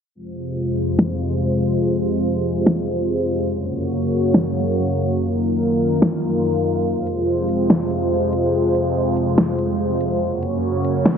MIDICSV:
0, 0, Header, 1, 3, 480
1, 0, Start_track
1, 0, Tempo, 419580
1, 168, Time_signature, 4, 2, 24, 8
1, 12788, End_track
2, 0, Start_track
2, 0, Title_t, "Supersaw synth"
2, 0, Program_c, 0, 81
2, 169, Note_on_c, 0, 48, 68
2, 169, Note_on_c, 0, 56, 69
2, 169, Note_on_c, 0, 65, 68
2, 169, Note_on_c, 0, 72, 82
2, 170, Note_on_c, 0, 41, 74
2, 3970, Note_off_c, 0, 48, 0
2, 3970, Note_off_c, 0, 56, 0
2, 3970, Note_off_c, 0, 65, 0
2, 3970, Note_off_c, 0, 72, 0
2, 3971, Note_off_c, 0, 41, 0
2, 4009, Note_on_c, 0, 42, 77
2, 4009, Note_on_c, 0, 58, 69
2, 4009, Note_on_c, 0, 66, 70
2, 4009, Note_on_c, 0, 73, 84
2, 4010, Note_on_c, 0, 49, 68
2, 5909, Note_off_c, 0, 73, 0
2, 5910, Note_off_c, 0, 42, 0
2, 5910, Note_off_c, 0, 49, 0
2, 5910, Note_off_c, 0, 58, 0
2, 5910, Note_off_c, 0, 66, 0
2, 5929, Note_on_c, 0, 42, 73
2, 5929, Note_on_c, 0, 65, 70
2, 5929, Note_on_c, 0, 70, 81
2, 5930, Note_on_c, 0, 51, 71
2, 5930, Note_on_c, 0, 58, 68
2, 7829, Note_off_c, 0, 42, 0
2, 7830, Note_off_c, 0, 51, 0
2, 7830, Note_off_c, 0, 58, 0
2, 7830, Note_off_c, 0, 70, 0
2, 7849, Note_on_c, 0, 41, 79
2, 7849, Note_on_c, 0, 48, 71
2, 7849, Note_on_c, 0, 56, 69
2, 7849, Note_on_c, 0, 72, 82
2, 11643, Note_off_c, 0, 65, 0
2, 11650, Note_off_c, 0, 41, 0
2, 11650, Note_off_c, 0, 48, 0
2, 11650, Note_off_c, 0, 56, 0
2, 11650, Note_off_c, 0, 72, 0
2, 11687, Note_on_c, 0, 42, 78
2, 11687, Note_on_c, 0, 49, 72
2, 11687, Note_on_c, 0, 58, 70
2, 11687, Note_on_c, 0, 66, 71
2, 11687, Note_on_c, 0, 73, 83
2, 12788, Note_off_c, 0, 42, 0
2, 12788, Note_off_c, 0, 49, 0
2, 12788, Note_off_c, 0, 58, 0
2, 12788, Note_off_c, 0, 66, 0
2, 12788, Note_off_c, 0, 73, 0
2, 12788, End_track
3, 0, Start_track
3, 0, Title_t, "Drums"
3, 1128, Note_on_c, 9, 38, 107
3, 1242, Note_off_c, 9, 38, 0
3, 3048, Note_on_c, 9, 38, 108
3, 3162, Note_off_c, 9, 38, 0
3, 4969, Note_on_c, 9, 38, 112
3, 5083, Note_off_c, 9, 38, 0
3, 6888, Note_on_c, 9, 38, 110
3, 7002, Note_off_c, 9, 38, 0
3, 8088, Note_on_c, 9, 42, 67
3, 8202, Note_off_c, 9, 42, 0
3, 8568, Note_on_c, 9, 42, 66
3, 8682, Note_off_c, 9, 42, 0
3, 8808, Note_on_c, 9, 38, 110
3, 8922, Note_off_c, 9, 38, 0
3, 9049, Note_on_c, 9, 42, 69
3, 9163, Note_off_c, 9, 42, 0
3, 9528, Note_on_c, 9, 42, 69
3, 9643, Note_off_c, 9, 42, 0
3, 10009, Note_on_c, 9, 42, 66
3, 10123, Note_off_c, 9, 42, 0
3, 10488, Note_on_c, 9, 42, 72
3, 10603, Note_off_c, 9, 42, 0
3, 10728, Note_on_c, 9, 38, 105
3, 10843, Note_off_c, 9, 38, 0
3, 10968, Note_on_c, 9, 42, 68
3, 11082, Note_off_c, 9, 42, 0
3, 11448, Note_on_c, 9, 42, 73
3, 11562, Note_off_c, 9, 42, 0
3, 11928, Note_on_c, 9, 42, 72
3, 12042, Note_off_c, 9, 42, 0
3, 12407, Note_on_c, 9, 42, 76
3, 12522, Note_off_c, 9, 42, 0
3, 12647, Note_on_c, 9, 38, 106
3, 12762, Note_off_c, 9, 38, 0
3, 12788, End_track
0, 0, End_of_file